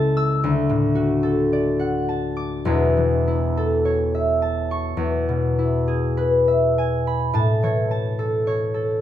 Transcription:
Already playing: C#2 C#3 C#4 E4 A4 C#5 E5 A5 E6
0.17 E6
0.44 D2
0.69 A2
0.95 F#4
1.23 A4
1.53 D5
1.79 F#5
2.09 A5
2.37 D6
2.65 E1 E2
2.97 E3
3.27 E4
3.57 A4
3.85 C#5
4.15 E5
4.42 A5
4.71 C#6
4.97 E2
5.29 B2
5.59 E4
5.88 G#4
6.17 B4
6.48 E5
6.78 G#5
7.07 B5
7.33 A2 A5
7.63 E3 C#5
7.91 A5
8.19 A4
8.47 C#5
8.74 A4

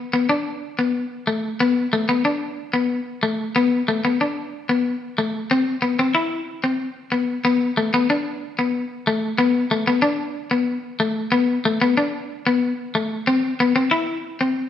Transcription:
0.13 B3
0.29 D4
0.79 B3
1.27 A3
1.60 B3
1.93 A3
2.09 B3
2.25 D4
2.74 B3
3.23 A3
3.56 B3
3.88 A3
4.05 B3
4.21 D4
4.69 B3
5.18 A3
5.51 C4
5.82 B3
5.99 C4
6.15 E4
6.64 C4
7.12 B3
7.45 B3
7.77 A3
7.94 B3
8.10 D4
8.59 B3
9.07 A3
9.38 B3
9.71 A3
9.87 B3
10.02 D4
10.51 B3
11.00 A3
11.32 B3
11.65 A3
11.82 B3
11.97 D4
12.47 B3
12.95 A3
13.27 C4
13.60 B3
13.76 C4
13.91 E4
14.41 C4

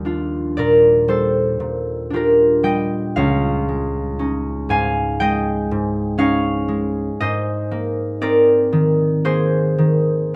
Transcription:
Already playing: D#2 F3 G3 A#4 D5 D#5 F5 G5
0.05 D4 F4
0.57 A#2 A#4 D5
1.08 G3 A4 C5
1.60 A#2
2.10 D4 F4 G4
2.16 A#4
2.63 G3 D#5 G5
3.16 C#2 C#5 F5
3.69 G#3
4.19 C#4 D#4
4.69 G#2 F5 G#5
5.20 G#3 D#5 G5
5.71 G#2
6.18 C#4 D#4 C#5 F5
6.68 G#3
7.20 G#2 C5 D#5
7.71 A#3
8.21 C4 D#4 A#4 D5
8.73 D#3
9.25 A#3 G#4 C5
9.78 D#3

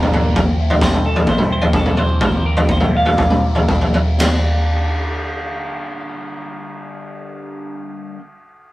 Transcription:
Already playing: G1 G2 D3 G3 A#3 D4 A#4
0.03 floor tom, mid tom
0.12 G2 D3 G3 A#3 D4 A#4, floor tom
0.36 A2 E3 A3 C4 E4, kick, floor tom
0.58 A2 E3 A3 C4 E4
0.70 floor tom
0.81 A2 E3 A3 C4 E4 C5, kick, snare
0.93 mid tom
1.03 A2 E3 A3 C4 E4 A4
1.16 floor tom
1.26 A2 E3 A3 C4 E4 C5, kick, floor tom
1.38 mid tom
1.49 A2 E3 A3 C4 E4 C5
1.62 floor tom
1.72 A2 E3 A3 C4 E4, kick, mid tom
1.76 A4
1.86 floor tom, mid tom
1.96 A2 E3 A3 C4 E4 C5, floor tom
2.21 C3 G3 A#3 E4 C5, kick, floor tom
2.45 C3 G3 A#3 E4 A#4
2.57 floor tom
2.68 C3 G3 A#3 E4 C5, kick
2.80 floor tom, mid tom
2.94 C3 G3 A#3 E4 F5
3.06 floor tom
3.17 C3 G3 A#3 E4, kick, floor tom
3.30 mid tom
3.43 C3 G3 A#3 E4
3.55 floor tom
3.68 C3 G3 A#3 E4, kick, mid tom
3.81 floor tom
3.94 C3 G3 A#3 E4, floor tom
4.20 G2 D3 G3 A#3 D4, snare, floor tom, ride bell

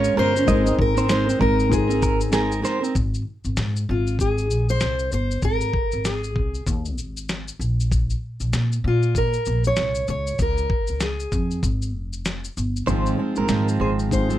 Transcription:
Already playing: G#3 C#4 F4 A#4 C#5
0.04 shaker
0.16 G1 G#3 C#4 F4 A#4 C5, snare
0.35 C#4 F4 A#4, shaker
0.46 G#1 G#3 A#3 C4 D#4 A#4 D#5, kick, shaker
0.53 C4
0.64 C4 D#4 A#4, shaker
0.79 G#1 A#4, kick
0.94 C4 D#4 A#4 C5, shaker
1.08 G#3 C4 D#4 A#4 C5, snare, shaker
1.26 C4 D#4 A#4, shaker
1.39 G#1 G#3 C4 D#4 A#4, kick
1.60 shaker
1.69 G#3 C4 D#4 G#4 A#4, kick, shaker
1.87 C4 D#4 A#4, shaker
2.02 A#4, kick, shaker
2.21 shaker
2.31 G#3 C4 D#4 G#4 A#4, snare, shaker
2.52 shaker
2.62 G#3 C4 D#4 A#4 C5, snare, shaker
2.80 C4 D#4 A#4, shaker
2.95 G#1, kick, shaker
3.14 shaker
3.45 G#1, shaker
3.57 G#2, snare, shaker
3.76 shaker
3.89 G#1 F4
4.07 shaker
4.19 G#4, kick, shaker
4.38 shaker
4.50 A#1, shaker
4.69 C5, shaker
4.80 C2, snare, shaker
4.99 shaker
5.12 G1 C5, shaker
5.31 shaker
5.42 G#1 A#4, kick, shaker
5.61 shaker
5.73 kick
5.92 G#1, shaker
6.05 G#4, snare, shaker
6.24 shaker
6.36 C2, kick
6.54 shaker
6.67 D#2, kick, shaker
6.85 shaker
6.98 G#1, shaker
7.17 shaker
7.29 snare, shaker
7.48 shaker
7.59 A#1, shaker
7.80 shaker
7.92 kick, shaker
8.10 shaker
8.40 A#1, shaker
8.53 A#2, snare, shaker
8.72 shaker
8.84 A#2 F4
9.03 shaker
9.15 A#4, kick, shaker
9.33 shaker
9.46 A#1, shaker
9.64 C#5, shaker
9.76 C2, snare, shaker
9.95 shaker
10.08 C#2 C#5, shaker
10.27 shaker
10.39 C#2 A#4, kick, shaker
10.58 shaker
10.70 kick
10.87 C#2, shaker
11.00 G#4, snare, shaker
11.20 shaker
11.32 F2, kick, shaker
11.51 shaker
11.63 G#1, kick, shaker
11.82 shaker
11.95 F1
12.13 shaker
12.25 snare, shaker
12.44 shaker
12.57 G1, shaker
12.76 shaker
12.86 G#1 G#2 D#3 F3 G#3 C4 D#4 F4 C5, kick, shaker
13.06 shaker
13.17 F3 G#3 C4 F4
13.36 G#1 F3 G#3 C4 F4 A#4, shaker
13.48 G#2 D#3 F3 G#3 C4 F4, snare, shaker
13.68 shaker
13.80 G#1 G#4 C5
13.99 shaker
14.11 G#3 D#4 F4 C5, kick, shaker
14.29 F3 G#3 C4 F4, shaker

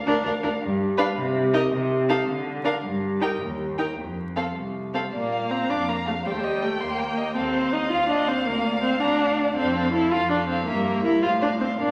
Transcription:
Already playing: F5
0.06 D2 D4 A#4
0.24 D2 D4 A#4
0.43 D2 D4 A#4
0.61 G2
0.98 D4 B4 F5
1.16 C3
1.53 D#4 A#4 D#5
1.72 C3
2.09 D#4 A4 F5
2.27 D3
2.64 D4 A#4 F5
2.83 G2
3.20 D#4 A#4 G5
3.40 D#2
3.78 D#4 A#4 G5
3.98 F2
4.36 C4 A4 F5
4.56 C2
4.94 C4 A4 F5
5.13 A#2 A#3 D5 F5
5.32 F5
5.51 C4 A#5
5.69 F2 D4 D6
5.88 A#3 A#5
6.07 A3 F5
6.25 D#2 G3 C5 G5
6.33 A3
6.39 G3
6.44 D#5
6.62 A3 G5
6.81 D#2 A#3 C6
7.00 G5
7.18 D#5
7.36 D#2 C4 A4 F5
7.54 C5
7.73 D#4 D#5
7.91 D#2 F4 F5
8.10 D4 D#5
8.28 C4 C5
8.46 D2 A#3 A#4
8.65 D5
8.83 C4 F5
9.01 D2 D4 A#5
9.20 F5
9.39 D5
9.56 F2 C4 A4 F5
9.75 A4 F5
9.93 E4 A4 F5
10.11 F2 F4 A4 F5
10.30 D4 A4 F5
10.48 C4 A4 F5
10.67 G2 A#3 A#4 E5
10.86 A#4 E5
11.04 E4 A#4 E5
11.22 A2 F4 C5 F5
11.41 D4 C5 F5
11.60 C4 C5 F5
11.79 A#2 D4 A#4 F5

